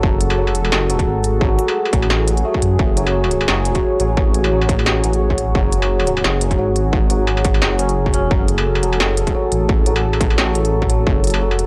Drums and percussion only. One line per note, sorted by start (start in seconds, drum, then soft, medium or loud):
0.03 kick loud
0.21 closed hi-hat medium
0.30 struck metal medium
0.47 struck metal soft
0.55 closed hi-hat medium
0.65 struck metal medium
0.72 snare loud
0.90 closed hi-hat medium
0.99 kick medium
0.99 closed hi-hat soft
1.24 closed hi-hat medium
1.41 kick loud
1.59 closed hi-hat medium
1.68 struck metal medium
1.85 struck metal soft
1.93 kick loud
1.93 closed hi-hat medium
2.02 struck metal medium
2.10 snare loud
2.28 closed hi-hat medium
2.37 closed hi-hat soft
2.54 kick medium
2.62 closed hi-hat medium
2.79 kick loud
2.97 closed hi-hat medium
3.07 struck metal medium
3.24 struck metal soft
3.31 closed hi-hat medium
3.41 struck metal medium
3.48 snare loud
3.65 closed hi-hat medium
3.75 kick medium
3.75 closed hi-hat soft
4.00 closed hi-hat medium
4.17 kick loud
4.34 closed hi-hat medium
4.44 struck metal medium
4.62 struck metal medium
4.69 kick loud
4.69 closed hi-hat medium
4.79 struck metal medium
4.86 snare loud
5.04 closed hi-hat medium
5.13 closed hi-hat soft
5.30 kick medium
5.38 closed hi-hat medium
5.55 kick loud
5.72 closed hi-hat medium
5.82 struck metal medium
6.00 struck metal medium
6.07 closed hi-hat medium
6.17 struck metal medium
6.24 snare loud
6.41 closed hi-hat medium
6.51 kick medium
6.51 closed hi-hat soft
6.76 closed hi-hat medium
6.93 kick loud
7.10 closed hi-hat medium
7.27 struck metal medium
7.37 struck metal medium
7.45 kick loud
7.45 closed hi-hat medium
7.54 struck metal medium
7.62 snare loud
7.79 closed hi-hat medium
7.89 closed hi-hat soft
8.06 kick medium
8.14 closed hi-hat medium
8.31 kick loud
8.48 closed hi-hat medium
8.58 struck metal medium
8.75 struck metal medium
8.83 closed hi-hat medium
8.93 struck metal medium
9.00 snare loud
9.17 closed hi-hat medium
9.27 kick medium
9.27 closed hi-hat soft
9.52 closed hi-hat medium
9.69 kick loud
9.86 closed hi-hat medium
9.96 struck metal medium
10.13 struck metal medium
10.21 kick loud
10.21 closed hi-hat medium
10.30 struck metal medium
10.38 snare loud
10.55 closed hi-hat medium
10.65 closed hi-hat soft
10.82 kick medium
10.90 closed hi-hat medium
11.07 kick loud
11.24 closed hi-hat medium
11.27 closed hi-hat medium
11.30 closed hi-hat medium
11.30 struck metal medium
11.51 struck metal soft
11.59 closed hi-hat medium